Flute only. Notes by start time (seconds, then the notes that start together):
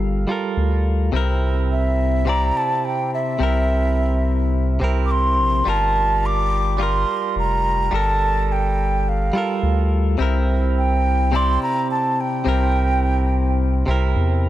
Already playing: F5
1.72 E5
2.28 A#5
2.57 A5
2.85 G5
3.14 E5
5.06 D6
5.11 C6
5.69 A5
6.26 D6
6.82 C6
7.39 A#5
7.96 A5
8.52 G5
9.09 F5
10.78 G5
11.35 C6
11.63 A#5
11.91 A5
12.21 G5